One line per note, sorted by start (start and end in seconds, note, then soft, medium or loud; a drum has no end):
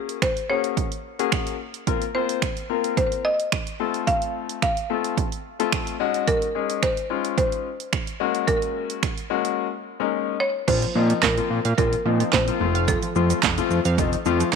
0.00 0.28 A#3 medium
0.00 0.28 C#4 medium
0.00 0.28 F#4 medium
0.00 0.24 G#4 medium
0.00 0.28 G#4 medium
0.09 closed hi-hat medium
0.22 0.48 C5 medium
0.22 finger snap loud
0.22 kick loud
0.22 closed hi-hat medium
0.37 closed hi-hat soft
0.49 0.85 A#3 medium
0.49 0.85 C#4 medium
0.49 0.85 F#4 medium
0.49 0.85 G#4 medium
0.49 1.01 C#5 medium
0.64 closed hi-hat medium
0.77 kick loud
0.77 closed hi-hat medium
0.92 closed hi-hat soft
1.19 1.54 A#3 medium
1.19 1.54 C#4 medium
1.19 1.54 F#4 medium
1.19 1.54 G#4 medium
1.19 closed hi-hat soft
1.32 finger snap loud
1.32 kick loud
1.32 closed hi-hat medium
1.47 closed hi-hat medium
1.74 closed hi-hat soft
1.87 2.02 A#3 medium
1.87 2.02 C4 medium
1.87 2.02 F4 medium
1.87 2.02 A#4 medium
1.87 kick loud
1.87 closed hi-hat medium
2.02 closed hi-hat soft
2.15 2.42 A#3 medium
2.15 2.43 C4 medium
2.15 2.43 F4 medium
2.15 2.96 C5 medium
2.15 2.43 C5 medium
2.29 closed hi-hat medium
2.42 finger snap loud
2.42 kick loud
2.42 closed hi-hat medium
2.57 closed hi-hat soft
2.70 3.25 A#3 medium
2.70 3.25 C4 medium
2.70 3.26 F4 medium
2.70 3.26 A#4 medium
2.84 closed hi-hat medium
2.97 3.26 C5 medium
2.97 kick loud
2.97 closed hi-hat medium
3.12 closed hi-hat soft
3.25 4.10 D#5 loud
3.40 closed hi-hat soft
3.52 finger snap loud
3.52 kick loud
3.52 closed hi-hat medium
3.67 closed hi-hat medium
3.80 4.68 A3 medium
3.80 4.68 C4 medium
3.80 4.68 F4 medium
3.80 4.68 A4 medium
3.94 closed hi-hat soft
4.07 4.61 F5 loud
4.07 kick loud
4.07 closed hi-hat medium
4.22 closed hi-hat soft
4.49 closed hi-hat medium
4.62 5.41 F5 medium
4.62 finger snap loud
4.62 kick loud
4.62 closed hi-hat medium
4.77 closed hi-hat soft
4.90 5.25 A3 medium
4.90 5.25 C4 medium
4.90 5.25 F4 medium
4.90 5.25 A4 medium
5.04 closed hi-hat medium
5.17 kick loud
5.17 closed hi-hat medium
5.32 closed hi-hat soft
5.59 5.94 A3 medium
5.59 5.94 C4 medium
5.59 5.94 F4 medium
5.59 5.94 A4 medium
5.59 closed hi-hat soft
5.72 finger snap loud
5.72 kick loud
5.72 closed hi-hat medium
5.87 closed hi-hat medium
6.00 6.45 G#3 medium
6.00 6.45 C#4 medium
6.00 6.45 D#4 medium
6.00 6.45 F#4 loud
6.14 closed hi-hat soft
6.27 6.84 A#4 loud
6.27 kick loud
6.27 closed hi-hat medium
6.42 closed hi-hat soft
6.55 6.83 G#3 medium
6.55 6.83 C#4 medium
6.55 6.83 D#4 medium
6.55 6.83 G#4 medium
6.70 closed hi-hat medium
6.83 7.36 C5 loud
6.83 finger snap loud
6.83 kick loud
6.83 closed hi-hat medium
6.97 closed hi-hat soft
7.10 7.66 G#3 medium
7.10 7.66 C#4 medium
7.10 7.66 D#4 medium
7.10 7.66 F4 medium
7.25 closed hi-hat medium
7.38 8.51 C5 loud
7.38 kick loud
7.38 closed hi-hat medium
7.52 closed hi-hat soft
7.80 closed hi-hat soft
7.93 finger snap loud
7.93 kick loud
7.93 closed hi-hat medium
8.07 closed hi-hat medium
8.20 9.09 G#3 medium
8.20 9.09 A#3 medium
8.20 9.09 C#4 medium
8.20 9.09 F#4 loud
8.35 closed hi-hat soft
8.47 10.09 A#4 medium
8.47 kick loud
8.47 closed hi-hat medium
8.62 closed hi-hat soft
8.90 closed hi-hat medium
9.03 finger snap loud
9.03 kick loud
9.03 closed hi-hat medium
9.18 closed hi-hat soft
9.30 9.65 G#3 medium
9.30 9.66 A#3 medium
9.30 9.66 C#4 medium
9.30 9.66 F#4 medium
9.45 closed hi-hat medium
10.00 10.34 G#3 medium
10.00 10.34 A#3 medium
10.00 10.34 C#4 medium
10.00 10.34 D#4 medium
10.40 10.69 C#5 loud
10.68 10.86 A#1 loud
10.68 10.83 F3 medium
10.68 10.79 F3 medium
10.68 10.83 A#3 medium
10.68 10.83 C4 medium
10.68 10.83 F4 medium
10.68 11.19 C5 loud
10.68 kick loud
10.68 closed hi-hat medium
10.68 crash medium
10.82 10.93 F3 medium
10.82 closed hi-hat soft
10.95 11.13 A#2 loud
10.95 11.17 F3 medium
10.95 11.07 F3 medium
10.95 11.17 A#3 medium
10.95 11.17 C4 medium
10.95 11.17 D#4 medium
11.10 11.20 F3 medium
11.10 closed hi-hat medium
11.23 11.41 A#1 loud
11.23 11.76 A#4 medium
11.23 kick loud
11.23 snare medium
11.23 clap loud
11.23 closed hi-hat medium
11.37 11.58 F3 medium
11.37 11.58 A#3 medium
11.37 11.58 C4 medium
11.37 11.58 F4 medium
11.37 closed hi-hat soft
11.51 11.60 A#2 loud
11.65 11.73 A#2 loud
11.65 11.75 F5 medium
11.65 closed hi-hat medium
11.78 11.96 A#1 loud
11.78 11.93 F3 medium
11.78 11.89 F3 medium
11.78 11.93 A#3 medium
11.78 11.93 C4 medium
11.78 11.93 F4 medium
11.78 12.35 A#4 medium
11.78 kick loud
11.78 closed hi-hat medium
11.93 closed hi-hat soft
12.05 12.23 A#2 loud
12.05 12.27 F3 medium
12.05 12.17 F3 medium
12.05 12.27 A#3 medium
12.05 12.27 C4 medium
12.05 12.27 D#4 medium
12.20 12.30 F3 medium
12.20 closed hi-hat soft
12.33 12.51 A#1 loud
12.33 12.45 C4 medium
12.33 12.90 C5 medium
12.33 kick loud
12.33 snare loud
12.33 clap loud
12.33 closed hi-hat medium
12.47 12.59 F3 medium
12.47 12.61 A#3 medium
12.47 12.59 C4 medium
12.47 12.59 F4 medium
12.47 closed hi-hat medium
12.60 12.96 F1 loud
12.60 13.05 F3 medium
12.60 12.72 F3 medium
12.60 13.05 A3 medium
12.60 13.05 C4 medium
12.60 13.05 F4 medium
12.75 12.85 F5 medium
12.75 closed hi-hat soft
12.88 13.00 F3 medium
12.88 13.94 A4 medium
12.88 kick loud
12.88 closed hi-hat medium
12.88 shaker medium
13.03 13.13 F3 medium
13.03 closed hi-hat soft
13.03 shaker soft
13.16 13.33 F2 loud
13.16 13.37 F3 medium
13.16 13.27 F3 medium
13.16 13.37 A3 medium
13.16 13.37 C4 medium
13.16 13.37 F4 medium
13.16 shaker medium
13.30 13.40 F3 medium
13.30 closed hi-hat medium
13.30 shaker medium
13.43 13.61 F1 loud
13.43 kick loud
13.43 snare medium
13.43 clap loud
13.43 closed hi-hat medium
13.43 shaker medium
13.58 13.78 F3 medium
13.58 13.78 A3 medium
13.58 13.78 C4 medium
13.58 13.78 F4 medium
13.58 closed hi-hat soft
13.58 shaker soft
13.71 13.80 F2 loud
13.71 shaker medium
13.85 14.00 F2 loud
13.85 13.95 F5 medium
13.85 closed hi-hat medium
13.85 shaker medium
13.98 14.16 F1 loud
13.98 14.13 F3 medium
13.98 14.10 F3 medium
13.98 14.13 A3 medium
13.98 14.13 C4 medium
13.98 14.13 D#4 medium
13.98 kick loud
13.98 closed hi-hat medium
13.98 shaker medium
14.13 closed hi-hat soft
14.13 shaker soft
14.25 14.44 F2 loud
14.25 14.47 F3 medium
14.25 14.37 F3 medium
14.25 14.47 A3 medium
14.25 14.47 C4 medium
14.25 14.47 F4 loud
14.25 shaker medium
14.40 14.51 F3 medium
14.40 closed hi-hat soft
14.40 shaker medium